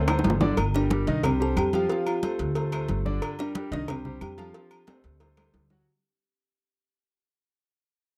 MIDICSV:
0, 0, Header, 1, 5, 480
1, 0, Start_track
1, 0, Key_signature, -2, "minor"
1, 0, Tempo, 330943
1, 834, Time_signature, 4, 2, 24, 8
1, 11853, End_track
2, 0, Start_track
2, 0, Title_t, "Kalimba"
2, 0, Program_c, 0, 108
2, 1097, Note_on_c, 0, 74, 116
2, 1100, Note_on_c, 0, 62, 91
2, 1756, Note_off_c, 0, 74, 0
2, 1758, Note_off_c, 0, 62, 0
2, 1814, Note_on_c, 0, 60, 78
2, 1820, Note_on_c, 0, 72, 97
2, 2028, Note_off_c, 0, 60, 0
2, 2031, Note_off_c, 0, 72, 0
2, 2057, Note_on_c, 0, 81, 77
2, 2060, Note_on_c, 0, 69, 104
2, 2269, Note_off_c, 0, 81, 0
2, 2271, Note_off_c, 0, 69, 0
2, 2293, Note_on_c, 0, 79, 70
2, 2301, Note_on_c, 0, 67, 94
2, 2507, Note_off_c, 0, 79, 0
2, 2511, Note_off_c, 0, 67, 0
2, 2539, Note_on_c, 0, 79, 74
2, 2542, Note_on_c, 0, 67, 91
2, 2751, Note_off_c, 0, 79, 0
2, 2752, Note_off_c, 0, 67, 0
2, 2780, Note_on_c, 0, 77, 70
2, 2787, Note_on_c, 0, 65, 91
2, 2991, Note_off_c, 0, 77, 0
2, 2995, Note_off_c, 0, 65, 0
2, 3015, Note_on_c, 0, 77, 63
2, 3017, Note_on_c, 0, 65, 88
2, 3452, Note_off_c, 0, 65, 0
2, 3452, Note_off_c, 0, 77, 0
2, 4932, Note_on_c, 0, 74, 119
2, 4934, Note_on_c, 0, 62, 91
2, 5371, Note_off_c, 0, 62, 0
2, 5399, Note_off_c, 0, 74, 0
2, 5416, Note_on_c, 0, 74, 109
2, 5421, Note_on_c, 0, 62, 80
2, 5519, Note_off_c, 0, 74, 0
2, 5523, Note_off_c, 0, 62, 0
2, 5658, Note_on_c, 0, 72, 101
2, 5661, Note_on_c, 0, 60, 74
2, 6093, Note_off_c, 0, 72, 0
2, 6094, Note_off_c, 0, 60, 0
2, 6121, Note_on_c, 0, 67, 90
2, 6126, Note_on_c, 0, 79, 68
2, 6341, Note_off_c, 0, 67, 0
2, 6343, Note_off_c, 0, 79, 0
2, 6365, Note_on_c, 0, 69, 92
2, 6374, Note_on_c, 0, 81, 72
2, 7261, Note_off_c, 0, 69, 0
2, 7266, Note_off_c, 0, 81, 0
2, 11853, End_track
3, 0, Start_track
3, 0, Title_t, "Grand piano"
3, 0, Program_c, 1, 0
3, 125, Note_on_c, 1, 57, 83
3, 129, Note_on_c, 1, 69, 80
3, 132, Note_on_c, 1, 72, 83
3, 514, Note_off_c, 1, 57, 0
3, 516, Note_off_c, 1, 69, 0
3, 518, Note_off_c, 1, 72, 0
3, 594, Note_on_c, 1, 50, 90
3, 597, Note_on_c, 1, 62, 96
3, 603, Note_on_c, 1, 74, 94
3, 791, Note_off_c, 1, 50, 0
3, 793, Note_off_c, 1, 62, 0
3, 796, Note_off_c, 1, 74, 0
3, 1082, Note_on_c, 1, 55, 77
3, 1085, Note_on_c, 1, 67, 77
3, 1092, Note_on_c, 1, 70, 79
3, 1275, Note_off_c, 1, 55, 0
3, 1277, Note_off_c, 1, 67, 0
3, 1281, Note_off_c, 1, 70, 0
3, 1325, Note_on_c, 1, 55, 82
3, 1327, Note_on_c, 1, 67, 78
3, 1333, Note_on_c, 1, 70, 78
3, 1517, Note_off_c, 1, 55, 0
3, 1518, Note_off_c, 1, 67, 0
3, 1522, Note_off_c, 1, 70, 0
3, 1557, Note_on_c, 1, 51, 89
3, 1564, Note_on_c, 1, 63, 89
3, 1569, Note_on_c, 1, 75, 90
3, 1753, Note_off_c, 1, 51, 0
3, 1756, Note_off_c, 1, 63, 0
3, 1760, Note_off_c, 1, 75, 0
3, 1792, Note_on_c, 1, 55, 75
3, 1794, Note_on_c, 1, 67, 72
3, 1800, Note_on_c, 1, 72, 69
3, 1990, Note_off_c, 1, 55, 0
3, 1991, Note_off_c, 1, 67, 0
3, 1994, Note_off_c, 1, 72, 0
3, 2025, Note_on_c, 1, 55, 77
3, 2030, Note_on_c, 1, 67, 83
3, 2038, Note_on_c, 1, 72, 84
3, 2422, Note_off_c, 1, 55, 0
3, 2425, Note_off_c, 1, 67, 0
3, 2430, Note_off_c, 1, 72, 0
3, 2517, Note_on_c, 1, 53, 95
3, 2520, Note_on_c, 1, 65, 95
3, 2523, Note_on_c, 1, 77, 94
3, 2713, Note_off_c, 1, 53, 0
3, 2714, Note_off_c, 1, 65, 0
3, 2716, Note_off_c, 1, 77, 0
3, 2745, Note_on_c, 1, 53, 87
3, 2747, Note_on_c, 1, 65, 89
3, 2755, Note_on_c, 1, 77, 85
3, 3142, Note_off_c, 1, 53, 0
3, 3144, Note_off_c, 1, 65, 0
3, 3148, Note_off_c, 1, 77, 0
3, 3239, Note_on_c, 1, 57, 78
3, 3242, Note_on_c, 1, 69, 81
3, 3247, Note_on_c, 1, 72, 78
3, 3630, Note_off_c, 1, 57, 0
3, 3632, Note_off_c, 1, 69, 0
3, 3635, Note_off_c, 1, 72, 0
3, 3715, Note_on_c, 1, 57, 76
3, 3721, Note_on_c, 1, 69, 71
3, 3726, Note_on_c, 1, 72, 72
3, 3911, Note_off_c, 1, 57, 0
3, 3915, Note_off_c, 1, 69, 0
3, 3918, Note_off_c, 1, 72, 0
3, 3953, Note_on_c, 1, 57, 83
3, 3960, Note_on_c, 1, 69, 81
3, 3961, Note_on_c, 1, 72, 82
3, 4347, Note_off_c, 1, 57, 0
3, 4351, Note_off_c, 1, 69, 0
3, 4352, Note_off_c, 1, 72, 0
3, 4430, Note_on_c, 1, 50, 91
3, 4433, Note_on_c, 1, 62, 96
3, 4437, Note_on_c, 1, 74, 93
3, 4825, Note_off_c, 1, 50, 0
3, 4826, Note_off_c, 1, 62, 0
3, 4829, Note_off_c, 1, 74, 0
3, 4910, Note_on_c, 1, 55, 83
3, 4915, Note_on_c, 1, 67, 80
3, 4920, Note_on_c, 1, 70, 83
3, 5108, Note_off_c, 1, 55, 0
3, 5111, Note_off_c, 1, 67, 0
3, 5114, Note_off_c, 1, 70, 0
3, 5152, Note_on_c, 1, 55, 82
3, 5152, Note_on_c, 1, 67, 82
3, 5159, Note_on_c, 1, 70, 80
3, 5349, Note_off_c, 1, 55, 0
3, 5349, Note_off_c, 1, 67, 0
3, 5353, Note_off_c, 1, 70, 0
3, 5391, Note_on_c, 1, 51, 91
3, 5397, Note_on_c, 1, 63, 87
3, 5399, Note_on_c, 1, 75, 95
3, 5589, Note_off_c, 1, 51, 0
3, 5592, Note_off_c, 1, 63, 0
3, 5593, Note_off_c, 1, 75, 0
3, 5627, Note_on_c, 1, 55, 73
3, 5634, Note_on_c, 1, 67, 75
3, 5639, Note_on_c, 1, 72, 73
3, 5827, Note_off_c, 1, 55, 0
3, 5831, Note_off_c, 1, 67, 0
3, 5833, Note_off_c, 1, 72, 0
3, 5871, Note_on_c, 1, 55, 80
3, 5872, Note_on_c, 1, 67, 82
3, 5879, Note_on_c, 1, 72, 80
3, 6266, Note_off_c, 1, 55, 0
3, 6266, Note_off_c, 1, 67, 0
3, 6270, Note_off_c, 1, 72, 0
3, 6347, Note_on_c, 1, 53, 98
3, 6354, Note_on_c, 1, 65, 99
3, 6357, Note_on_c, 1, 77, 96
3, 6546, Note_off_c, 1, 53, 0
3, 6550, Note_off_c, 1, 65, 0
3, 6552, Note_off_c, 1, 77, 0
3, 6583, Note_on_c, 1, 53, 82
3, 6589, Note_on_c, 1, 65, 86
3, 6592, Note_on_c, 1, 77, 84
3, 6981, Note_off_c, 1, 53, 0
3, 6984, Note_off_c, 1, 65, 0
3, 6986, Note_off_c, 1, 77, 0
3, 7069, Note_on_c, 1, 57, 79
3, 7075, Note_on_c, 1, 69, 76
3, 7077, Note_on_c, 1, 72, 81
3, 7464, Note_off_c, 1, 57, 0
3, 7468, Note_off_c, 1, 69, 0
3, 7469, Note_off_c, 1, 72, 0
3, 7556, Note_on_c, 1, 57, 73
3, 7557, Note_on_c, 1, 69, 72
3, 7563, Note_on_c, 1, 72, 73
3, 7752, Note_off_c, 1, 57, 0
3, 7752, Note_off_c, 1, 69, 0
3, 7756, Note_off_c, 1, 72, 0
3, 7789, Note_on_c, 1, 57, 84
3, 7794, Note_on_c, 1, 69, 82
3, 7796, Note_on_c, 1, 72, 78
3, 8184, Note_off_c, 1, 57, 0
3, 8187, Note_off_c, 1, 69, 0
3, 8188, Note_off_c, 1, 72, 0
3, 8281, Note_on_c, 1, 54, 92
3, 8283, Note_on_c, 1, 66, 91
3, 8287, Note_on_c, 1, 78, 92
3, 8474, Note_off_c, 1, 54, 0
3, 8476, Note_off_c, 1, 66, 0
3, 8478, Note_off_c, 1, 78, 0
3, 11853, End_track
4, 0, Start_track
4, 0, Title_t, "Upright bass"
4, 0, Program_c, 2, 32
4, 0, Note_on_c, 2, 38, 102
4, 301, Note_off_c, 2, 38, 0
4, 350, Note_on_c, 2, 31, 97
4, 776, Note_off_c, 2, 31, 0
4, 834, Note_on_c, 2, 31, 96
4, 1503, Note_off_c, 2, 31, 0
4, 1554, Note_on_c, 2, 36, 96
4, 2223, Note_off_c, 2, 36, 0
4, 2270, Note_on_c, 2, 41, 96
4, 2696, Note_off_c, 2, 41, 0
4, 3471, Note_on_c, 2, 38, 98
4, 4142, Note_off_c, 2, 38, 0
4, 4188, Note_on_c, 2, 31, 99
4, 4615, Note_off_c, 2, 31, 0
4, 5388, Note_on_c, 2, 36, 98
4, 6060, Note_off_c, 2, 36, 0
4, 6109, Note_on_c, 2, 41, 94
4, 6535, Note_off_c, 2, 41, 0
4, 7310, Note_on_c, 2, 38, 95
4, 7981, Note_off_c, 2, 38, 0
4, 8032, Note_on_c, 2, 38, 95
4, 8457, Note_off_c, 2, 38, 0
4, 11853, End_track
5, 0, Start_track
5, 0, Title_t, "Drums"
5, 112, Note_on_c, 9, 56, 75
5, 112, Note_on_c, 9, 60, 107
5, 114, Note_on_c, 9, 75, 72
5, 115, Note_on_c, 9, 66, 81
5, 115, Note_on_c, 9, 68, 109
5, 118, Note_on_c, 9, 63, 35
5, 257, Note_off_c, 9, 56, 0
5, 257, Note_off_c, 9, 60, 0
5, 259, Note_off_c, 9, 75, 0
5, 260, Note_off_c, 9, 66, 0
5, 260, Note_off_c, 9, 68, 0
5, 263, Note_off_c, 9, 63, 0
5, 273, Note_on_c, 9, 60, 90
5, 352, Note_on_c, 9, 66, 95
5, 354, Note_on_c, 9, 56, 73
5, 357, Note_on_c, 9, 63, 85
5, 418, Note_off_c, 9, 60, 0
5, 434, Note_on_c, 9, 61, 93
5, 497, Note_off_c, 9, 66, 0
5, 499, Note_off_c, 9, 56, 0
5, 502, Note_off_c, 9, 63, 0
5, 579, Note_off_c, 9, 61, 0
5, 589, Note_on_c, 9, 61, 102
5, 591, Note_on_c, 9, 66, 92
5, 597, Note_on_c, 9, 63, 79
5, 734, Note_off_c, 9, 61, 0
5, 736, Note_off_c, 9, 66, 0
5, 742, Note_off_c, 9, 63, 0
5, 830, Note_on_c, 9, 56, 116
5, 833, Note_on_c, 9, 68, 103
5, 835, Note_on_c, 9, 75, 68
5, 839, Note_on_c, 9, 63, 35
5, 975, Note_off_c, 9, 56, 0
5, 978, Note_off_c, 9, 68, 0
5, 980, Note_off_c, 9, 75, 0
5, 984, Note_off_c, 9, 63, 0
5, 1078, Note_on_c, 9, 63, 36
5, 1079, Note_on_c, 9, 68, 70
5, 1223, Note_off_c, 9, 63, 0
5, 1224, Note_off_c, 9, 68, 0
5, 1312, Note_on_c, 9, 56, 76
5, 1317, Note_on_c, 9, 63, 103
5, 1457, Note_off_c, 9, 56, 0
5, 1462, Note_off_c, 9, 63, 0
5, 1556, Note_on_c, 9, 56, 75
5, 1558, Note_on_c, 9, 63, 37
5, 1701, Note_off_c, 9, 56, 0
5, 1703, Note_off_c, 9, 63, 0
5, 1791, Note_on_c, 9, 56, 115
5, 1795, Note_on_c, 9, 75, 69
5, 1797, Note_on_c, 9, 63, 36
5, 1797, Note_on_c, 9, 64, 91
5, 1797, Note_on_c, 9, 68, 113
5, 1936, Note_off_c, 9, 56, 0
5, 1940, Note_off_c, 9, 75, 0
5, 1942, Note_off_c, 9, 63, 0
5, 1942, Note_off_c, 9, 64, 0
5, 1942, Note_off_c, 9, 68, 0
5, 2039, Note_on_c, 9, 63, 36
5, 2184, Note_off_c, 9, 63, 0
5, 2273, Note_on_c, 9, 56, 72
5, 2276, Note_on_c, 9, 68, 107
5, 2278, Note_on_c, 9, 63, 88
5, 2279, Note_on_c, 9, 75, 74
5, 2418, Note_off_c, 9, 56, 0
5, 2421, Note_off_c, 9, 68, 0
5, 2423, Note_off_c, 9, 63, 0
5, 2424, Note_off_c, 9, 75, 0
5, 2511, Note_on_c, 9, 56, 69
5, 2513, Note_on_c, 9, 63, 83
5, 2519, Note_on_c, 9, 68, 85
5, 2656, Note_off_c, 9, 56, 0
5, 2658, Note_off_c, 9, 63, 0
5, 2664, Note_off_c, 9, 68, 0
5, 2748, Note_on_c, 9, 56, 109
5, 2754, Note_on_c, 9, 63, 38
5, 2893, Note_off_c, 9, 56, 0
5, 2899, Note_off_c, 9, 63, 0
5, 2992, Note_on_c, 9, 63, 36
5, 2996, Note_on_c, 9, 68, 105
5, 2996, Note_on_c, 9, 75, 71
5, 3137, Note_off_c, 9, 63, 0
5, 3141, Note_off_c, 9, 68, 0
5, 3141, Note_off_c, 9, 75, 0
5, 3231, Note_on_c, 9, 56, 75
5, 3233, Note_on_c, 9, 63, 102
5, 3233, Note_on_c, 9, 68, 77
5, 3376, Note_off_c, 9, 56, 0
5, 3378, Note_off_c, 9, 63, 0
5, 3378, Note_off_c, 9, 68, 0
5, 3471, Note_on_c, 9, 56, 75
5, 3475, Note_on_c, 9, 63, 36
5, 3616, Note_off_c, 9, 56, 0
5, 3620, Note_off_c, 9, 63, 0
5, 3704, Note_on_c, 9, 56, 113
5, 3710, Note_on_c, 9, 68, 87
5, 3716, Note_on_c, 9, 63, 36
5, 3849, Note_off_c, 9, 56, 0
5, 3855, Note_off_c, 9, 68, 0
5, 3861, Note_off_c, 9, 63, 0
5, 3949, Note_on_c, 9, 56, 75
5, 3954, Note_on_c, 9, 63, 34
5, 3954, Note_on_c, 9, 68, 104
5, 3959, Note_on_c, 9, 75, 70
5, 4094, Note_off_c, 9, 56, 0
5, 4099, Note_off_c, 9, 63, 0
5, 4099, Note_off_c, 9, 68, 0
5, 4104, Note_off_c, 9, 75, 0
5, 4184, Note_on_c, 9, 56, 77
5, 4198, Note_on_c, 9, 63, 87
5, 4329, Note_off_c, 9, 56, 0
5, 4343, Note_off_c, 9, 63, 0
5, 4436, Note_on_c, 9, 63, 84
5, 4581, Note_off_c, 9, 63, 0
5, 4670, Note_on_c, 9, 56, 110
5, 4671, Note_on_c, 9, 68, 105
5, 4673, Note_on_c, 9, 75, 67
5, 4815, Note_off_c, 9, 56, 0
5, 4816, Note_off_c, 9, 68, 0
5, 4818, Note_off_c, 9, 75, 0
5, 4914, Note_on_c, 9, 68, 72
5, 4915, Note_on_c, 9, 63, 38
5, 5059, Note_off_c, 9, 68, 0
5, 5060, Note_off_c, 9, 63, 0
5, 5149, Note_on_c, 9, 56, 78
5, 5152, Note_on_c, 9, 63, 101
5, 5294, Note_off_c, 9, 56, 0
5, 5297, Note_off_c, 9, 63, 0
5, 5393, Note_on_c, 9, 56, 77
5, 5393, Note_on_c, 9, 63, 37
5, 5538, Note_off_c, 9, 56, 0
5, 5538, Note_off_c, 9, 63, 0
5, 5629, Note_on_c, 9, 75, 68
5, 5630, Note_on_c, 9, 68, 114
5, 5631, Note_on_c, 9, 56, 118
5, 5632, Note_on_c, 9, 63, 37
5, 5632, Note_on_c, 9, 64, 85
5, 5774, Note_off_c, 9, 75, 0
5, 5775, Note_off_c, 9, 68, 0
5, 5776, Note_off_c, 9, 56, 0
5, 5777, Note_off_c, 9, 63, 0
5, 5777, Note_off_c, 9, 64, 0
5, 5875, Note_on_c, 9, 63, 36
5, 5875, Note_on_c, 9, 64, 77
5, 6020, Note_off_c, 9, 63, 0
5, 6020, Note_off_c, 9, 64, 0
5, 6109, Note_on_c, 9, 75, 74
5, 6110, Note_on_c, 9, 68, 112
5, 6111, Note_on_c, 9, 56, 72
5, 6113, Note_on_c, 9, 63, 83
5, 6254, Note_off_c, 9, 75, 0
5, 6255, Note_off_c, 9, 68, 0
5, 6256, Note_off_c, 9, 56, 0
5, 6258, Note_off_c, 9, 63, 0
5, 6350, Note_on_c, 9, 63, 85
5, 6351, Note_on_c, 9, 56, 70
5, 6351, Note_on_c, 9, 68, 84
5, 6495, Note_off_c, 9, 63, 0
5, 6496, Note_off_c, 9, 56, 0
5, 6496, Note_off_c, 9, 68, 0
5, 6590, Note_on_c, 9, 56, 115
5, 6593, Note_on_c, 9, 63, 38
5, 6735, Note_off_c, 9, 56, 0
5, 6738, Note_off_c, 9, 63, 0
5, 6829, Note_on_c, 9, 68, 108
5, 6829, Note_on_c, 9, 75, 69
5, 6836, Note_on_c, 9, 63, 38
5, 6974, Note_off_c, 9, 68, 0
5, 6974, Note_off_c, 9, 75, 0
5, 6982, Note_off_c, 9, 63, 0
5, 7066, Note_on_c, 9, 56, 78
5, 7072, Note_on_c, 9, 65, 97
5, 7072, Note_on_c, 9, 68, 77
5, 7074, Note_on_c, 9, 63, 99
5, 7211, Note_off_c, 9, 56, 0
5, 7217, Note_off_c, 9, 65, 0
5, 7217, Note_off_c, 9, 68, 0
5, 7220, Note_off_c, 9, 63, 0
5, 7308, Note_on_c, 9, 56, 76
5, 7314, Note_on_c, 9, 63, 37
5, 7453, Note_off_c, 9, 56, 0
5, 7459, Note_off_c, 9, 63, 0
5, 7545, Note_on_c, 9, 56, 108
5, 7550, Note_on_c, 9, 66, 85
5, 7550, Note_on_c, 9, 68, 87
5, 7555, Note_on_c, 9, 63, 36
5, 7690, Note_off_c, 9, 56, 0
5, 7695, Note_off_c, 9, 66, 0
5, 7695, Note_off_c, 9, 68, 0
5, 7700, Note_off_c, 9, 63, 0
5, 7791, Note_on_c, 9, 75, 66
5, 7793, Note_on_c, 9, 56, 73
5, 7793, Note_on_c, 9, 66, 99
5, 7793, Note_on_c, 9, 68, 111
5, 7797, Note_on_c, 9, 63, 34
5, 7936, Note_off_c, 9, 75, 0
5, 7938, Note_off_c, 9, 56, 0
5, 7938, Note_off_c, 9, 66, 0
5, 7938, Note_off_c, 9, 68, 0
5, 7942, Note_off_c, 9, 63, 0
5, 8030, Note_on_c, 9, 66, 100
5, 8033, Note_on_c, 9, 63, 85
5, 8035, Note_on_c, 9, 56, 73
5, 8175, Note_off_c, 9, 66, 0
5, 8178, Note_off_c, 9, 63, 0
5, 8180, Note_off_c, 9, 56, 0
5, 8270, Note_on_c, 9, 66, 75
5, 8272, Note_on_c, 9, 63, 83
5, 8415, Note_off_c, 9, 66, 0
5, 8417, Note_off_c, 9, 63, 0
5, 11853, End_track
0, 0, End_of_file